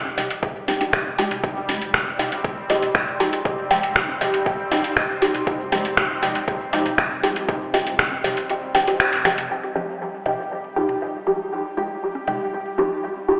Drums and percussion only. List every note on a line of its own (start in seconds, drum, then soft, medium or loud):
0.05 low bongo medium
0.18 open hi-hat medium
0.18 mid tom medium
0.30 closed hi-hat soft
0.43 kick loud
0.43 closed hi-hat soft
0.68 open hi-hat medium
0.68 low bongo medium
0.81 closed hi-hat soft
0.93 finger snap medium
0.93 kick loud
0.93 closed hi-hat soft
1.18 open hi-hat medium
1.31 closed hi-hat soft
1.31 mid tom medium
1.44 kick loud
1.44 closed hi-hat soft
1.69 open hi-hat medium
1.69 low bongo medium
1.82 closed hi-hat soft
1.94 finger snap medium
1.94 kick loud
1.94 closed hi-hat soft
2.19 open hi-hat medium
2.19 mid tom medium
2.32 closed hi-hat soft
2.44 kick loud
2.44 closed hi-hat soft
2.70 open hi-hat medium
2.82 closed hi-hat soft
2.82 mid tom medium
2.95 finger snap medium
2.95 kick loud
2.95 closed hi-hat soft
3.20 open hi-hat medium
3.33 closed hi-hat soft
3.45 kick loud
3.45 closed hi-hat soft
3.71 open hi-hat medium
3.83 closed hi-hat soft
3.96 finger snap medium
3.96 kick loud
3.96 closed hi-hat soft
4.08 low bongo soft
4.21 open hi-hat medium
4.21 mid tom medium
4.34 closed hi-hat soft
4.46 kick loud
4.46 closed hi-hat soft
4.71 open hi-hat medium
4.71 low bongo medium
4.84 closed hi-hat soft
4.97 finger snap medium
4.97 kick loud
4.97 closed hi-hat soft
5.22 open hi-hat medium
5.34 closed hi-hat soft
5.34 mid tom medium
5.47 kick loud
5.47 closed hi-hat soft
5.72 open hi-hat medium
5.72 low bongo soft
5.85 closed hi-hat soft
5.97 finger snap medium
5.97 kick loud
5.97 closed hi-hat soft
6.23 open hi-hat medium
6.23 mid tom medium
6.35 closed hi-hat soft
6.48 kick loud
6.48 closed hi-hat soft
6.73 open hi-hat medium
6.86 closed hi-hat soft
6.86 mid tom medium
6.98 finger snap medium
6.98 kick loud
6.98 closed hi-hat soft
7.23 open hi-hat medium
7.36 closed hi-hat soft
7.49 kick loud
7.49 closed hi-hat soft
7.74 open hi-hat medium
7.74 low bongo soft
7.87 closed hi-hat soft
7.99 finger snap medium
7.99 kick loud
7.99 closed hi-hat soft
8.12 low bongo medium
8.24 open hi-hat medium
8.24 mid tom medium
8.37 closed hi-hat soft
8.49 closed hi-hat soft
8.75 open hi-hat medium
8.75 low bongo soft
8.87 closed hi-hat soft
9.00 finger snap medium
9.00 closed hi-hat soft
9.13 open hi-hat soft
9.25 finger snap soft
9.25 open hi-hat medium
9.38 closed hi-hat soft
9.38 mid tom medium
9.76 low bongo soft
10.26 mid tom medium
10.89 mid tom medium
12.15 low bongo soft
12.27 mid tom medium
12.78 low bongo soft